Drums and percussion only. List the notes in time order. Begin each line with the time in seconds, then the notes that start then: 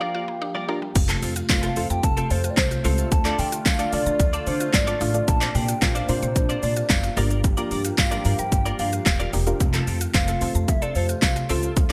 0.95 kick, closed hi-hat, crash, shaker
1.09 clap, closed hi-hat, shaker
1.23 open hi-hat, shaker
1.36 closed hi-hat, shaker
1.49 kick, snare, clap, closed hi-hat, tambourine, shaker
1.63 closed hi-hat, shaker
1.76 open hi-hat, shaker
1.90 closed hi-hat, shaker
2.03 kick, closed hi-hat, shaker
2.17 closed hi-hat, shaker
2.30 open hi-hat, shaker
2.44 closed hi-hat, shaker
2.57 kick, snare, clap, closed hi-hat, tambourine, shaker
2.71 closed hi-hat, shaker
2.85 open hi-hat, shaker
2.98 closed hi-hat, shaker
3.12 kick, closed hi-hat, shaker
3.25 clap, closed hi-hat, shaker
3.39 open hi-hat, shaker
3.52 closed hi-hat, shaker
3.66 kick, snare, clap, closed hi-hat, tambourine, shaker
3.79 closed hi-hat, shaker
3.93 open hi-hat, shaker
4.06 closed hi-hat, shaker
4.20 kick, closed hi-hat, shaker
4.33 closed hi-hat, shaker
4.47 open hi-hat, shaker
4.60 closed hi-hat, shaker
4.73 kick, snare, clap, closed hi-hat, tambourine, shaker
4.87 closed hi-hat, shaker
5.01 open hi-hat, shaker
5.14 closed hi-hat, shaker
5.28 kick, closed hi-hat, shaker
5.41 clap, closed hi-hat, shaker
5.55 open hi-hat, shaker
5.68 closed hi-hat, shaker
5.82 kick, snare, clap, closed hi-hat, tambourine, shaker
5.95 closed hi-hat, shaker
6.09 open hi-hat, shaker
6.23 closed hi-hat, shaker
6.36 kick, closed hi-hat, shaker
6.50 closed hi-hat, shaker
6.63 open hi-hat, shaker
6.76 closed hi-hat, shaker
6.90 kick, snare, clap, closed hi-hat, tambourine, shaker
7.04 closed hi-hat, shaker
7.17 open hi-hat, shaker
7.31 closed hi-hat, shaker
7.44 kick, closed hi-hat, shaker
7.57 closed hi-hat, shaker
7.71 open hi-hat, shaker
7.85 closed hi-hat, shaker
7.98 kick, snare, clap, closed hi-hat, tambourine, shaker
8.12 closed hi-hat, shaker
8.25 open hi-hat, shaker
8.39 closed hi-hat, shaker
8.52 kick, closed hi-hat, shaker
8.66 closed hi-hat, shaker
8.79 open hi-hat, shaker
8.93 closed hi-hat, shaker
9.06 kick, snare, clap, closed hi-hat, tambourine, shaker
9.20 closed hi-hat, shaker
9.33 open hi-hat, shaker
9.47 closed hi-hat, shaker
9.60 kick, closed hi-hat, shaker
9.74 clap, closed hi-hat, shaker
9.87 open hi-hat, shaker
10.01 closed hi-hat, shaker
10.14 kick, snare, clap, closed hi-hat, tambourine, shaker
10.28 closed hi-hat, shaker
10.41 open hi-hat, shaker
10.55 closed hi-hat, shaker
10.68 kick, closed hi-hat, shaker
10.82 closed hi-hat, shaker
10.95 open hi-hat, shaker
11.09 closed hi-hat, shaker
11.22 kick, snare, clap, closed hi-hat, tambourine, shaker
11.36 closed hi-hat, shaker
11.49 open hi-hat, shaker
11.63 closed hi-hat, shaker
11.77 kick, closed hi-hat, shaker